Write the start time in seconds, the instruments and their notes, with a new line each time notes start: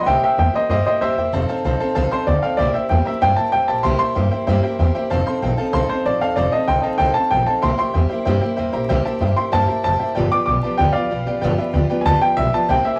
0.03 steel-string acoustic guitar C3, honky-tonk piano C5, upright piano E5 F#5 G5
0.07 upright bass C2, steel-string acoustic guitar G3 A#3 E4 G4, honky-tonk piano E5 G5
0.22 steel-string acoustic guitar A#3 E4 G4, honky-tonk piano C5 E5 G5, upright piano E5 G5, muted upright bass stroke
0.36 upright bass E2, steel-string acoustic guitar G3 A#3 E4 G4, honky-tonk piano C5 E5 G5, upright piano E5 G5
0.53 steel-string acoustic guitar A#3 E4 G4, honky-tonk piano C5 E5 A#5, upright piano C5 D#5, muted upright bass stroke
0.69 upright bass G2, steel-string acoustic guitar C3 G3 A#3 E4 G4, upright piano C5 D#5, honky-tonk piano C5 E5 G5
0.85 steel-string acoustic guitar A#3 E4 G4, upright piano C5 D#5, honky-tonk piano C5 E5 G5, muted upright bass stroke
1.01 upright bass E2, steel-string acoustic guitar G3 A#3 E4 G4, upright piano C5 E5, honky-tonk piano C5 E5 G5
1.17 upright bass E2, steel-string acoustic guitar E4 G4, honky-tonk piano C5 E5 G5
1.21 steel-string acoustic guitar A#3
1.32 upright bass F1, steel-string acoustic guitar F3 C4 D#4 A4, honky-tonk piano C5 F5 A5
1.48 steel-string acoustic guitar C4 D#4 A4, honky-tonk piano C5 F5 A5, muted upright bass stroke
1.64 upright bass C2, steel-string acoustic guitar F3 C4 D#4 A4, honky-tonk piano C5 F5 A5
1.80 steel-string acoustic guitar C4 D#4 A4, honky-tonk piano C5 F5 A5
1.95 upright bass C2, steel-string acoustic guitar F3 C4 D#4 A4, honky-tonk piano C5 F5 A5
2.11 steel-string acoustic guitar C4 D#4 A4, honky-tonk piano C5 F5 C6, upright piano C5, muted upright bass stroke
2.26 upright bass D2, steel-string acoustic guitar F3 C4 D#4 A4, honky-tonk piano C5 F5 G5, upright piano D5
2.42 steel-string acoustic guitar C4 D#4 A4, honky-tonk piano C5 F5 G5, upright piano F5
2.57 upright bass C2, steel-string acoustic guitar C3 G3 A#3 G4, honky-tonk piano C5 E5 G5, upright piano D5
2.61 steel-string acoustic guitar E4
2.74 steel-string acoustic guitar A#3 E4 G4, honky-tonk piano C5 E5 G5, upright piano E5, muted upright bass stroke
2.89 upright bass E2, steel-string acoustic guitar G3 A#3 E4 G4, honky-tonk piano C5 E5 G5, upright piano G5
3.05 steel-string acoustic guitar E4 G4, honky-tonk piano C5 E5 A#5, upright piano E5
3.09 steel-string acoustic guitar A#3
3.21 upright bass G2, steel-string acoustic guitar C3 G3 A#3 E4 G4, honky-tonk piano C5 E5 G5, upright piano G5
3.36 steel-string acoustic guitar A#3 E4 G4, honky-tonk piano C5 E5 G5, upright piano A5, muted upright bass stroke
3.52 upright bass E2, steel-string acoustic guitar G3 A#3 E4 G4, honky-tonk piano C5 E5 G5, upright piano G5
3.68 upright bass A#1, steel-string acoustic guitar A#3 E4 G4, honky-tonk piano C5 E5 G5, upright piano A5
3.83 upright bass C2, steel-string acoustic guitar C3 G3 A#3 E4 G4, honky-tonk piano C5 E5 G5, upright piano C6
3.99 steel-string acoustic guitar A#3 E4 G4, honky-tonk piano C5 E5 A5, upright piano C6
4.15 upright bass G2, steel-string acoustic guitar G3 A#3 E4 G4, honky-tonk piano C5 E5 G5
4.31 steel-string acoustic guitar A#3 E4 G4, honky-tonk piano C5 E5 G5, muted upright bass stroke
4.47 upright bass G2, steel-string acoustic guitar C3 G3 A#3 E4 G4, honky-tonk piano C5 E5 G5
4.63 steel-string acoustic guitar A#3 E4 G4, honky-tonk piano C5 E5 G5, muted upright bass stroke
4.79 upright bass E2, steel-string acoustic guitar G3 A#3 E4 G4, honky-tonk piano C5 E5 G5
4.95 steel-string acoustic guitar A#3 E4 G4, honky-tonk piano C5 E5 G5, muted upright bass stroke
5.10 upright bass F1, steel-string acoustic guitar F3 C4 D#4 A4, honky-tonk piano C5 F5 A5
5.26 steel-string acoustic guitar C4 D#4 A4, honky-tonk piano C5 F5 C6
5.42 upright bass A1, steel-string acoustic guitar F3 C4 D#4 A4, honky-tonk piano C5 F5 G5
5.57 steel-string acoustic guitar D#4 A4, honky-tonk piano C5 F5 A5
5.61 steel-string acoustic guitar C4
5.73 upright bass C2, steel-string acoustic guitar F3 C4 D#4 A4, honky-tonk piano C5 F5 C6
5.89 steel-string acoustic guitar D#4 A4, honky-tonk piano C5 F5 A5, upright piano C5, muted upright bass stroke
5.94 steel-string acoustic guitar C4
6.05 upright bass A1, steel-string acoustic guitar F3 C4 D#4 A4, honky-tonk piano C5 F5 A5, upright piano D5
6.20 upright bass D#2, steel-string acoustic guitar C4 D#4 A4, honky-tonk piano C5 F5 A5, upright piano F5
6.36 upright bass F1, steel-string acoustic guitar F3 C4 D#4 A4, honky-tonk piano C5 F5 A5, upright piano D5
6.52 steel-string acoustic guitar C4 D#4 A4, honky-tonk piano C5 F5 A5, upright piano D#5, muted upright bass stroke
6.68 upright bass C2, steel-string acoustic guitar F3 C4 D#4 A4, honky-tonk piano C5 F5 C6, upright piano G5
6.82 steel-string acoustic guitar D#4 A4, honky-tonk piano C5 F5 A5, upright piano D#5
6.86 steel-string acoustic guitar C4
6.98 upright bass C2, steel-string acoustic guitar F3 C4 D#4, honky-tonk piano C5 F5 A5, upright piano G5
7.02 steel-string acoustic guitar A4
7.14 steel-string acoustic guitar D#4 A4, honky-tonk piano C5 F5 A5, upright piano A5, muted upright bass stroke
7.19 steel-string acoustic guitar C4
7.31 upright bass A1, steel-string acoustic guitar F3 C4 D#4 A4, honky-tonk piano C5 F5 A5, upright piano G5
7.46 steel-string acoustic guitar C4 D#4 A4, honky-tonk piano C5 F5 A5, upright piano A5, muted upright bass stroke
7.62 upright bass C2, steel-string acoustic guitar C3 G3 A#3 E4 G4, honky-tonk piano C5 E5 G5, upright piano C6
7.77 steel-string acoustic guitar E4 G4, honky-tonk piano C5 E5 G5, upright piano C6, muted upright bass stroke
7.82 steel-string acoustic guitar A#3
7.93 upright bass E2, steel-string acoustic guitar G3 A#3 E4 G4, honky-tonk piano C5 E5 G5
8.09 steel-string acoustic guitar E4 G4, honky-tonk piano C5 E5 G5
8.14 steel-string acoustic guitar A#3
8.25 upright bass G2, steel-string acoustic guitar C3 G3 A#3 E4 G4, honky-tonk piano C5 E5 G5
8.41 steel-string acoustic guitar E4 G4, honky-tonk piano C5 E5 G5, muted upright bass stroke
8.46 steel-string acoustic guitar A#3
8.56 upright bass E2, steel-string acoustic guitar G3 A#3 E4, honky-tonk piano C5 E5 G5
8.60 steel-string acoustic guitar G4
8.72 upright bass A#1, steel-string acoustic guitar A#3 E4 G4, honky-tonk piano C5 E5 A#5
8.89 upright bass C2, steel-string acoustic guitar C3 G3 A#3 E4 G4, honky-tonk piano C5 E5 G5
9.05 steel-string acoustic guitar A#3 E4 G4, honky-tonk piano C5 E5 A5
9.19 upright bass G2, steel-string acoustic guitar G3 A#3 E4 G4, honky-tonk piano C5 E5 G5
9.36 steel-string acoustic guitar A#3 E4 G4, honky-tonk piano C5 E5 G5, upright piano C6, muted upright bass stroke
9.52 upright bass G2, steel-string acoustic guitar C3 G3 A#3 E4 G4, honky-tonk piano C5 E5 G5, upright piano A5
9.67 steel-string acoustic guitar A#3 E4 G4, honky-tonk piano C5 E5 A#5, muted upright bass stroke
9.83 upright bass F#1, steel-string acoustic guitar G3 A#3 E4 G4, honky-tonk piano C5 E5 G5, upright piano A5
9.99 steel-string acoustic guitar A#3 E4 G4, honky-tonk piano C5 E5 G5, muted upright bass stroke
10.14 upright bass G1, steel-string acoustic guitar G2 D3 F3 B3 F4 G4, honky-tonk piano B4 D5 G5
10.31 steel-string acoustic guitar F3 B3 F4 G4, honky-tonk piano B4 D5 G5, upright piano D6, muted upright bass stroke
10.46 upright bass B1, steel-string acoustic guitar F3 B3 F4, honky-tonk piano B4 D5 G5, upright piano D6
10.50 steel-string acoustic guitar G4
10.62 steel-string acoustic guitar F3 B3 F4 G4, honky-tonk piano B4 D5 A5, muted upright bass stroke
10.78 upright bass D2, steel-string acoustic guitar G2 D3 F3 B3 F4 G4, honky-tonk piano B4 D5 G5, upright piano G5
10.92 steel-string acoustic guitar F4 G4, honky-tonk piano B4 D5 G5, upright piano D5 F5, muted upright bass stroke
10.97 steel-string acoustic guitar F3 B3
11.10 upright bass B1, steel-string acoustic guitar F3 B3 F4 G4, honky-tonk piano B4 D5 G5
11.26 upright bass F1, steel-string acoustic guitar F3 B3 F4 G4, honky-tonk piano B4 D5 G5
11.41 upright bass G1, steel-string acoustic guitar G2 D3 F3 B3 F4 G4, honky-tonk piano B4 D5 G5
11.58 steel-string acoustic guitar F3 B3 F4 G4, honky-tonk piano B4 D5 E5, muted upright bass stroke
11.73 upright bass D2, steel-string acoustic guitar F3 B3 F4 G4, honky-tonk piano B4 D5 G5
11.89 steel-string acoustic guitar F3 B3 F4 G4, honky-tonk piano B4 D5 G5, muted upright bass stroke
12.01 upright piano G#5
12.05 upright bass D2, steel-string acoustic guitar G2 D3 F3 B3 F4 G4, honky-tonk piano B4 D5 G5, upright piano A5
12.21 steel-string acoustic guitar F3 B3 F4 G4, honky-tonk piano B4 D5 G5, upright piano G5, muted upright bass stroke
12.37 upright bass B1, steel-string acoustic guitar F3 B3 F4 G4, honky-tonk piano B4 D5 G5, upright piano E5
12.52 steel-string acoustic guitar F3 B3 F4 G4, honky-tonk piano B4 D5 G5, upright piano A5
12.69 upright bass C2, steel-string acoustic guitar C3 G3 A#3 E4 G4, honky-tonk piano C5 E5 G5, upright piano G5
12.83 steel-string acoustic guitar A#3 E4 G4, honky-tonk piano C5 E5 G5, upright piano E5
12.96 upright piano G#5